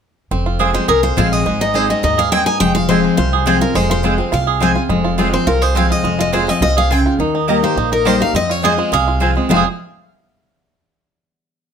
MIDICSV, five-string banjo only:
0, 0, Header, 1, 2, 480
1, 0, Start_track
1, 0, Key_signature, -4, "minor"
1, 0, Tempo, 287494
1, 519, Time_signature, 4, 2, 24, 8
1, 19586, End_track
2, 0, Start_track
2, 0, Title_t, "Five-string banjo"
2, 0, Program_c, 0, 105
2, 523, Note_on_c, 0, 60, 60
2, 771, Note_on_c, 0, 65, 57
2, 995, Note_on_c, 0, 68, 55
2, 1243, Note_on_c, 0, 56, 63
2, 1435, Note_off_c, 0, 65, 0
2, 1468, Note_off_c, 0, 68, 0
2, 1475, Note_on_c, 0, 68, 65
2, 1725, Note_on_c, 0, 65, 50
2, 1954, Note_on_c, 0, 53, 47
2, 2197, Note_off_c, 0, 56, 0
2, 2203, Note_on_c, 0, 56, 59
2, 2391, Note_off_c, 0, 65, 0
2, 2433, Note_off_c, 0, 56, 0
2, 2436, Note_off_c, 0, 53, 0
2, 2440, Note_on_c, 0, 56, 73
2, 2686, Note_on_c, 0, 63, 57
2, 2860, Note_off_c, 0, 60, 0
2, 2915, Note_off_c, 0, 56, 0
2, 2922, Note_on_c, 0, 56, 56
2, 3164, Note_on_c, 0, 60, 58
2, 3351, Note_off_c, 0, 63, 0
2, 3401, Note_on_c, 0, 63, 69
2, 3629, Note_off_c, 0, 68, 0
2, 3636, Note_on_c, 0, 68, 52
2, 3868, Note_off_c, 0, 60, 0
2, 3875, Note_on_c, 0, 60, 45
2, 4075, Note_off_c, 0, 63, 0
2, 4118, Note_on_c, 0, 63, 58
2, 4342, Note_off_c, 0, 56, 0
2, 4348, Note_on_c, 0, 56, 76
2, 4352, Note_off_c, 0, 63, 0
2, 4604, Note_on_c, 0, 65, 62
2, 4830, Note_off_c, 0, 56, 0
2, 4836, Note_on_c, 0, 56, 61
2, 5077, Note_off_c, 0, 60, 0
2, 5084, Note_on_c, 0, 60, 57
2, 5302, Note_off_c, 0, 65, 0
2, 5309, Note_on_c, 0, 65, 65
2, 5551, Note_off_c, 0, 68, 0
2, 5558, Note_on_c, 0, 68, 56
2, 5784, Note_off_c, 0, 60, 0
2, 5791, Note_on_c, 0, 60, 46
2, 6033, Note_off_c, 0, 65, 0
2, 6040, Note_on_c, 0, 65, 57
2, 6260, Note_off_c, 0, 56, 0
2, 6267, Note_on_c, 0, 56, 82
2, 6503, Note_off_c, 0, 65, 0
2, 6510, Note_on_c, 0, 65, 58
2, 6739, Note_off_c, 0, 56, 0
2, 6745, Note_on_c, 0, 56, 54
2, 6978, Note_off_c, 0, 60, 0
2, 6985, Note_on_c, 0, 60, 50
2, 7206, Note_off_c, 0, 65, 0
2, 7213, Note_on_c, 0, 65, 69
2, 7458, Note_off_c, 0, 68, 0
2, 7464, Note_on_c, 0, 68, 53
2, 7693, Note_off_c, 0, 60, 0
2, 7699, Note_on_c, 0, 60, 45
2, 7931, Note_off_c, 0, 65, 0
2, 7938, Note_on_c, 0, 65, 53
2, 8165, Note_off_c, 0, 56, 0
2, 8171, Note_on_c, 0, 56, 75
2, 8414, Note_off_c, 0, 65, 0
2, 8421, Note_on_c, 0, 65, 54
2, 8637, Note_off_c, 0, 56, 0
2, 8657, Note_on_c, 0, 56, 57
2, 8895, Note_off_c, 0, 60, 0
2, 8901, Note_on_c, 0, 60, 53
2, 9086, Note_off_c, 0, 65, 0
2, 9134, Note_on_c, 0, 65, 68
2, 9332, Note_off_c, 0, 56, 0
2, 9376, Note_off_c, 0, 68, 0
2, 9383, Note_on_c, 0, 68, 47
2, 9566, Note_off_c, 0, 60, 0
2, 9605, Note_on_c, 0, 60, 49
2, 9810, Note_off_c, 0, 65, 0
2, 9857, Note_on_c, 0, 65, 55
2, 10046, Note_off_c, 0, 68, 0
2, 10084, Note_on_c, 0, 56, 69
2, 10285, Note_off_c, 0, 60, 0
2, 10312, Note_off_c, 0, 65, 0
2, 10332, Note_on_c, 0, 65, 58
2, 10550, Note_off_c, 0, 56, 0
2, 10570, Note_on_c, 0, 56, 59
2, 10824, Note_on_c, 0, 60, 62
2, 11000, Note_off_c, 0, 65, 0
2, 11050, Note_on_c, 0, 65, 68
2, 11248, Note_off_c, 0, 56, 0
2, 11300, Note_on_c, 0, 68, 54
2, 11486, Note_off_c, 0, 60, 0
2, 11534, Note_on_c, 0, 60, 45
2, 11728, Note_off_c, 0, 65, 0
2, 11785, Note_on_c, 0, 65, 56
2, 11965, Note_off_c, 0, 68, 0
2, 12011, Note_off_c, 0, 60, 0
2, 12014, Note_off_c, 0, 65, 0
2, 12018, Note_on_c, 0, 63, 61
2, 12247, Note_off_c, 0, 63, 0
2, 12267, Note_on_c, 0, 63, 62
2, 12478, Note_off_c, 0, 63, 0
2, 12498, Note_on_c, 0, 63, 54
2, 12748, Note_on_c, 0, 58, 69
2, 12961, Note_off_c, 0, 63, 0
2, 12981, Note_on_c, 0, 63, 68
2, 13201, Note_off_c, 0, 63, 0
2, 13221, Note_on_c, 0, 63, 56
2, 13410, Note_off_c, 0, 58, 0
2, 13448, Note_on_c, 0, 51, 53
2, 13701, Note_on_c, 0, 58, 58
2, 13887, Note_off_c, 0, 63, 0
2, 13931, Note_off_c, 0, 51, 0
2, 13934, Note_off_c, 0, 58, 0
2, 13937, Note_on_c, 0, 60, 63
2, 14183, Note_on_c, 0, 65, 57
2, 14423, Note_on_c, 0, 68, 56
2, 14615, Note_off_c, 0, 60, 0
2, 14669, Note_on_c, 0, 56, 74
2, 14851, Note_off_c, 0, 65, 0
2, 14885, Note_off_c, 0, 68, 0
2, 14905, Note_on_c, 0, 68, 70
2, 15154, Note_on_c, 0, 65, 55
2, 15334, Note_off_c, 0, 56, 0
2, 15390, Note_on_c, 0, 53, 51
2, 15581, Note_off_c, 0, 68, 0
2, 15638, Note_on_c, 0, 56, 59
2, 15818, Note_off_c, 0, 65, 0
2, 15845, Note_off_c, 0, 56, 0
2, 15865, Note_on_c, 0, 56, 77
2, 15866, Note_off_c, 0, 53, 0
2, 15900, Note_on_c, 0, 60, 89
2, 15934, Note_on_c, 0, 65, 77
2, 15968, Note_on_c, 0, 68, 85
2, 16093, Note_off_c, 0, 56, 0
2, 16112, Note_off_c, 0, 60, 0
2, 16131, Note_off_c, 0, 65, 0
2, 16148, Note_off_c, 0, 68, 0
2, 19586, End_track
0, 0, End_of_file